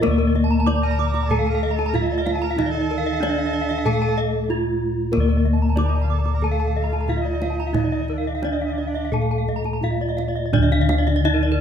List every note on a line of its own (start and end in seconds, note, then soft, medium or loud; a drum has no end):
0.00 0.63 A#2 medium
0.00 0.66 A#3 medium
0.00 1.30 A#3 soft
0.00 1.89 A#4 medium
0.00 0.11 A#4 medium
0.00 kendang high medium
0.00 kendang low medium
0.07 3.83 D2 medium
0.11 0.19 D5 soft
0.18 0.27 A#4 medium
0.27 0.35 D5 medium
0.35 0.43 D#5 soft
0.35 kendang slap soft
0.44 0.51 A5 soft
0.51 0.59 A#5 medium
0.60 0.67 A5 medium
0.66 0.74 D#4 soft
0.66 1.31 D5 medium
0.66 0.75 D6 medium
0.66 kendang high soft
0.75 0.83 A#5 soft
0.82 1.28 A#4 medium
0.82 0.91 A5 medium
0.91 0.99 A#5 medium
0.99 1.07 D6 medium
0.99 kendang slap soft
1.07 1.15 A#5 soft
1.14 1.23 D6 medium
1.14 kendang slap soft
1.23 1.49 A4 medium
1.23 1.31 A#5 medium
1.30 2.58 A3 medium
1.30 1.94 A4 medium
1.30 1.39 A5 medium
1.30 kendang low medium
1.39 1.47 F5 soft
1.47 1.75 A#4 medium
1.47 1.54 A5 medium
1.55 1.63 F5 soft
1.63 1.71 D#5 medium
1.71 1.89 A4 medium
1.71 1.79 A#5 soft
1.79 1.87 A5 medium
1.79 kendang slap soft
1.86 2.01 A#4 medium
1.86 1.94 A#5 medium
1.93 2.01 D#4 soft
1.93 2.58 F4 medium
1.93 2.03 F5 medium
1.93 kendang slap soft
1.93 kendang low soft
2.01 2.07 A4 medium
2.01 2.10 D#5 soft
2.09 2.21 A4 medium
2.09 2.19 D5 soft
2.18 2.31 A#4 medium
2.18 2.26 D#5 medium
2.26 2.34 F5 medium
2.26 kendang high soft
2.30 2.44 A4 medium
2.36 2.43 A5 soft
2.42 2.70 A#4 medium
2.42 2.50 A#5 medium
2.51 2.58 F5 medium
2.57 3.86 D#3 medium
2.57 3.19 D#4 medium
2.57 3.22 D#4 medium
2.57 2.66 D#5 medium
2.57 kendang low medium
2.66 4.20 A4 medium
2.66 2.74 D5 soft
2.75 2.82 D#5 medium
2.81 2.90 D5 soft
2.91 2.98 A#4 soft
2.91 kendang slap soft
2.98 3.06 F5 medium
3.06 3.14 D#5 medium
3.14 3.22 F5 soft
3.20 3.85 D4 medium
3.20 3.28 D#4 soft
3.20 3.30 D5 medium
3.20 kendang high soft
3.30 3.38 D#5 soft
3.38 3.46 F5 medium
3.46 3.54 D#5 medium
3.53 3.61 D5 medium
3.61 3.69 F5 medium
3.69 3.77 D#5 medium
3.69 kendang slap soft
3.78 3.86 F5 medium
3.85 5.73 A#2 medium
3.85 5.14 A3 medium
3.85 4.49 A4 medium
3.85 3.94 A5 medium
3.85 kendang low soft
3.93 4.01 F5 soft
4.02 4.10 A5 medium
4.09 4.17 F5 soft
4.18 4.26 D#5 medium
4.49 4.57 D#4 soft
4.49 5.13 F4 medium
5.12 6.42 A#3 soft
5.12 5.77 A#3 medium
5.12 7.04 A#4 medium
5.12 5.21 A#4 medium
5.12 kendang high soft
5.12 kendang low soft
5.17 9.10 D2 loud
5.17 5.29 D5 soft
5.29 5.37 A#4 soft
5.37 5.45 D5 soft
5.45 5.53 D#5 soft
5.45 kendang slap soft
5.53 5.61 A5 soft
5.62 5.70 A#5 soft
5.69 5.77 A5 soft
5.75 5.90 D4 soft
5.75 5.86 D#4 soft
5.75 6.42 D5 soft
5.75 5.86 D6 medium
5.75 kendang high soft
5.86 6.01 D#4 medium
5.86 5.94 A#5 soft
5.95 6.02 A5 soft
6.01 6.13 F4 soft
6.01 6.10 A#5 soft
6.10 6.21 A4 medium
6.10 6.18 D6 soft
6.19 6.33 A4 medium
6.19 6.26 A#5 soft
6.25 6.34 D6 soft
6.25 kendang slap soft
6.34 6.46 A#4 medium
6.34 6.43 A#5 soft
6.42 7.76 A3 soft
6.42 7.08 A4 soft
6.42 6.51 A5 medium
6.42 kendang low soft
6.46 6.83 A4 medium
6.51 6.59 F5 soft
6.60 6.68 A5 soft
6.68 6.76 F5 soft
6.77 6.84 D#5 soft
6.81 7.20 F4 soft
6.81 6.92 A#5 soft
6.92 7.01 A5 soft
6.92 kendang slap soft
7.01 7.09 A#5 soft
7.08 7.16 D#4 soft
7.08 7.76 F4 medium
7.08 7.17 F5 soft
7.08 kendang slap soft
7.08 kendang low soft
7.17 8.12 D#4 medium
7.17 7.25 D#5 soft
7.25 7.33 D5 soft
7.34 7.42 D#5 soft
7.42 7.51 F5 soft
7.42 kendang high soft
7.50 7.59 A5 soft
7.60 7.68 A#5 soft
7.67 7.75 F5 soft
7.73 9.12 D#3 soft
7.73 8.42 D#4 soft
7.73 8.42 D#4 medium
7.73 7.84 D#5 soft
7.73 kendang high soft
7.73 kendang low medium
7.84 7.93 D5 soft
7.92 8.01 D#5 soft
7.92 kendang slap soft
8.02 8.10 D5 soft
8.08 8.17 D4 soft
8.08 8.18 A#4 soft
8.08 kendang slap soft
8.18 8.26 D#4 soft
8.18 8.26 F5 soft
8.26 8.33 D4 soft
8.26 8.35 D#5 soft
8.35 8.41 D#4 soft
8.35 8.43 F5 soft
8.42 8.48 D4 soft
8.42 9.12 D4 medium
8.42 8.51 D#4 soft
8.42 8.52 D5 medium
8.42 kendang slap soft
8.42 kendang high soft
8.50 8.56 D#4 soft
8.50 8.61 D#5 soft
8.57 8.64 D4 soft
8.61 8.71 D#4 soft
8.61 8.69 F5 soft
8.70 8.79 D4 soft
8.70 8.78 D#5 soft
8.78 8.86 D#4 soft
8.78 8.86 D5 soft
8.78 kendang slap soft
8.87 9.11 D4 medium
8.87 8.95 F5 soft
8.95 9.03 D#5 soft
8.95 kendang slap soft
9.05 9.13 F5 soft
9.12 11.20 A#2 medium
9.12 10.53 A3 soft
9.12 9.82 A4 soft
9.12 9.22 A5 soft
9.12 kendang low soft
9.22 9.30 F5 soft
9.31 9.39 A5 soft
9.38 9.47 F5 soft
9.48 9.56 D#5 soft
9.48 kendang slap soft
9.48 kendang low soft
9.56 9.65 A#5 soft
9.64 9.74 A5 soft
9.64 kendang slap soft
9.73 9.82 A#5 soft
9.81 9.89 D#4 soft
9.81 10.53 F4 soft
9.81 9.92 F5 medium
9.81 kendang slap soft
9.81 kendang low soft
9.91 9.99 D#5 soft
10.01 10.09 D5 soft
10.09 10.17 D#5 soft
10.17 10.26 F5 soft
10.17 kendang slap soft
10.17 kendang high soft
10.28 10.36 D5 soft
10.36 10.44 D#5 soft
10.46 10.53 D5 soft
10.53 11.61 D3 medium
10.53 11.61 D4 medium
10.53 11.24 D4 medium
10.53 10.62 D5 medium
10.53 kendang low medium
10.58 11.61 D2 loud
10.63 10.71 D#5 medium
10.71 10.80 F5 medium
10.71 kendang slap soft
10.81 10.89 D#5 medium
10.89 10.98 F5 medium
10.89 kendang high medium
10.98 11.07 D5 medium
11.07 11.16 D#5 medium
11.07 kendang slap soft
11.16 11.25 D5 medium
11.24 11.32 D#4 soft
11.24 11.61 D#4 medium
11.24 11.34 D#5 loud
11.34 11.43 A#4 medium
11.43 11.51 D5 medium
11.52 11.60 A#4 medium